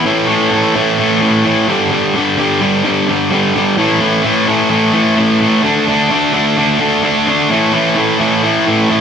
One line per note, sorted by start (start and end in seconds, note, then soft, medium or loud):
0.04 0.26 A2 loud
0.04 0.27 E3 medium
0.04 0.28 A3 loud
0.28 0.50 A2 medium
0.28 0.51 E3 medium
0.28 0.51 A3 loud
0.51 0.73 A2 medium
0.51 0.74 E3 medium
0.51 0.75 A3 medium
0.75 0.97 A2 medium
0.75 0.98 E3 loud
0.75 0.99 A3 loud
0.98 1.20 A2 medium
0.98 1.20 E3 loud
0.98 1.21 A3 loud
1.21 1.43 A2 medium
1.21 1.44 E3 medium
1.21 1.45 A3 loud
1.45 1.66 A2 medium
1.45 1.67 E3 loud
1.45 1.67 A3 medium
1.68 1.89 G2 loud
1.68 1.90 D3 loud
1.68 1.91 G3 loud
1.91 2.13 G2 loud
1.91 2.14 D3 medium
1.91 2.15 G3 loud
2.15 2.37 G2 medium
2.15 2.37 D3 medium
2.15 2.38 G3 loud
2.38 2.60 G2 medium
2.38 2.61 D3 loud
2.38 2.61 G3 loud
2.61 2.83 G2 loud
2.61 2.84 D3 loud
2.61 2.84 G3 loud
2.84 3.07 G2 medium
2.84 3.07 D3 medium
2.84 3.08 G3 loud
3.08 3.29 G2 medium
3.08 3.30 D3 loud
3.08 3.31 G3 medium
3.31 3.53 G2 medium
3.31 3.54 D3 loud
3.31 3.54 G3 loud
3.54 3.76 G2 medium
3.54 3.76 D3 medium
3.54 3.76 G3 medium
3.77 3.99 A2 loud
3.77 4.00 E3 loud
3.77 4.01 A3 medium
4.00 4.23 A2 medium
4.00 4.23 E3 medium
4.00 4.25 A3 loud
4.24 4.46 A2 medium
4.24 4.47 E3 medium
4.24 4.48 A3 medium
4.47 4.69 A2 medium
4.47 4.69 E3 loud
4.47 4.70 A3 loud
4.70 4.92 A2 loud
4.70 4.93 E3 loud
4.70 4.94 A3 loud
4.93 5.15 A2 medium
4.93 5.16 E3 medium
4.93 5.18 A3 loud
5.17 5.39 A2 medium
5.17 5.40 E3 loud
5.17 5.41 A3 loud
5.40 5.62 A2 medium
5.40 5.62 E3 medium
5.40 5.64 A3 loud
5.63 5.86 D3 loud
5.63 5.87 A3 loud
5.63 5.87 D4 loud
5.87 6.09 D3 medium
5.87 6.11 A3 medium
5.87 6.10 D4 loud
6.10 6.32 D3 medium
6.10 6.33 A3 loud
6.10 6.33 D4 loud
6.33 6.55 D3 medium
6.33 6.56 A3 loud
6.33 6.57 D4 loud
6.57 6.78 D3 loud
6.57 6.79 A3 loud
6.57 6.80 D4 loud
6.79 7.01 D3 medium
6.79 7.02 A3 medium
6.79 7.03 D4 loud
7.03 7.26 D3 medium
7.03 7.26 A3 loud
7.03 7.27 D4 loud
7.27 7.49 D3 medium
7.27 7.49 A3 medium
7.27 7.49 D4 loud
7.49 7.72 A2 loud
7.49 7.73 E3 loud
7.49 7.73 A3 loud
7.73 7.95 A2 medium
7.73 7.96 E3 loud
7.73 7.96 A3 medium
7.96 8.18 A2 medium
7.96 8.19 E3 medium
7.96 8.20 A3 loud
8.19 8.42 A2 medium
8.19 8.42 E3 loud
8.19 8.43 A3 loud
8.43 8.65 A2 medium
8.43 8.66 E3 loud
8.43 8.67 A3 loud
8.66 8.88 A2 medium
8.66 8.89 E3 loud
8.66 8.90 A3 medium
8.89 9.01 A2 medium
8.89 9.01 E3 medium
8.89 9.01 A3 loud